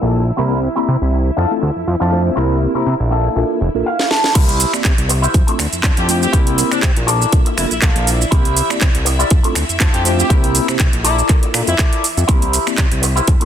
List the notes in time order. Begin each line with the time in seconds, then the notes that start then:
Already playing: E4 E5
0.01 A#1 A#3 D4 A4
0.37 C2 A#3 C4 E4 G4 A#4
0.75 A#3 C4 E4 G4 A#4 D5
0.88 C3
1.02 C2
1.12 muted clean electric guitar stroke
1.36 F2 D4 F4 A4
1.51 A3 C4 D4 F4 A4
1.61 D2, muted clean electric guitar stroke
1.76 F2
1.87 F2
2.00 F2 D4 F4 A4
2.12 A3 C4 D4 F4 C5
2.36 C2 A#3 C4 E4 G4 A#4
2.74 C3 A#3 C4 E4 G4 A#4 C5
2.87 C3
3.00 A#1
3.10 A#3 D4 A4
3.36 A#1 A#3 D4 F4 A4 A#4
3.60 F1, muted clean electric guitar stroke
3.74 A#1 A#3 D4 F4 A4 A#4
3.86 F5
3.99 snare
4.11 A5, snare
4.24 snare
4.35 C2 A#3 C4 E4 G4 A#4 C5 E5, kick, closed hi-hat, crash, shaker
4.49 closed hi-hat
4.60 open hi-hat, shaker
4.73 A#3 C4 E4 G4 D5, finger snap, shaker
4.85 C3, kick, clap, closed hi-hat, shaker
4.98 C2, closed hi-hat
5.09 muted clean electric guitar stroke, open hi-hat, shaker
5.22 E4 G4 A#4 C5, shaker
5.34 F2, kick, closed hi-hat, shaker
5.47 A3 C4 D4 F4 A4, muted clean electric guitar stroke, closed hi-hat
5.58 D2, finger snap, muted clean electric guitar stroke, open hi-hat, shaker
5.73 F2, closed hi-hat, shaker
5.83 F2 D4 F4 A4 C5, kick, clap, closed hi-hat, shaker
5.97 F2 G4, closed hi-hat
6.08 A3 C4 D4 F4 G4 C5, open hi-hat, shaker
6.22 G4, shaker
6.32 C2 A#3 E4 G4 A#4 C5, kick, closed hi-hat, shaker
6.47 closed hi-hat
6.58 open hi-hat, shaker
6.71 C3 A#3 C4 D4 E4 G4, finger snap, shaker
6.83 C3, kick, clap, closed hi-hat, shaker
6.97 A#1, closed hi-hat
7.07 F4 A4 A#4 D5, open hi-hat, shaker
7.22 shaker
7.32 A#1 A#3 D4 F4 A4 A#4, kick, closed hi-hat, shaker
7.45 muted clean electric guitar stroke, closed hi-hat
7.56 F1 A#3 D4 E4 F4 A4 A#4, finger snap, muted clean electric guitar stroke, open hi-hat, shaker
7.71 A#1 E4, closed hi-hat, shaker
7.82 A#1 F4 A4 A#4 D5 F5, kick, clap, closed hi-hat, shaker
7.96 A#1, closed hi-hat
8.07 open hi-hat, shaker
8.21 shaker
8.31 C2 A#3 C4 E4 G4 A#4 C5, kick, closed hi-hat, shaker
8.45 closed hi-hat
8.57 open hi-hat, shaker
8.70 A#3 C4 E4 G4 D5, finger snap, shaker
8.81 C3, kick, clap, closed hi-hat, shaker
8.95 C2, closed hi-hat
9.05 muted clean electric guitar stroke, open hi-hat, shaker
9.19 E4 G4 A#4 D5, shaker
9.30 F2, kick, closed hi-hat, shaker
9.43 A3 C4 D4 F4 A4, muted clean electric guitar stroke, closed hi-hat
9.55 D2, finger snap, muted clean electric guitar stroke, open hi-hat, shaker
9.69 F2, closed hi-hat, shaker
9.80 F2 D4 F4 A4 C5, kick, clap, closed hi-hat, shaker
9.94 F2 G4, closed hi-hat
10.05 A3 C4 D4 F4 G4 C5, open hi-hat, shaker
10.19 G4, shaker
10.29 C2 A#3 C4 E4 G4 A#4 C5, kick, closed hi-hat, shaker
10.44 closed hi-hat
10.55 open hi-hat, shaker
10.68 C3 A#3 C4 E4 G4 C5, finger snap, shaker
10.79 C3, kick, clap, closed hi-hat, shaker
10.93 A#1, closed hi-hat
11.04 E4 F4 A4 A#4 D5, open hi-hat, shaker
11.19 shaker
11.29 A#3 D4 F4 A4 A#4, kick, clap, closed hi-hat, shaker
11.42 muted clean electric guitar stroke, closed hi-hat
11.53 A#2 A#3 D4 F4 A4 A#4, finger snap, muted clean electric guitar stroke, open hi-hat, shaker
11.67 F2 E4, closed hi-hat, shaker
11.78 F4 A4 A#4 D5, kick, clap, closed hi-hat, shaker
11.93 closed hi-hat
12.04 open hi-hat, shaker
12.17 F2, closed hi-hat, shaker
12.27 C2 A#3 C4 E4 G4 A#4 C5 E5, kick, closed hi-hat, shaker
12.42 closed hi-hat
12.53 open hi-hat, shaker
12.67 A#3 C4 E4 G4 D5, finger snap, shaker
12.78 C3, kick, clap, closed hi-hat, shaker
12.92 C2, closed hi-hat
13.02 muted clean electric guitar stroke, open hi-hat, shaker
13.16 E4 G4 A#4 C5, shaker
13.27 F2, kick, closed hi-hat, shaker
13.40 A3 C4 D4 F4 A4, muted clean electric guitar stroke, closed hi-hat